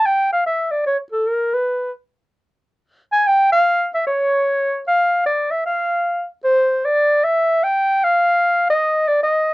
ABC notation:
X:1
M:4/4
L:1/8
Q:"Swing" 1/4=151
K:F
V:1 name="Clarinet"
g f e d _d A B =B- | =B z6 _a | g f2 e _d4 | f2 d e f3 z |
c2 d2 e2 g2 | f3 _e2 d e2 |]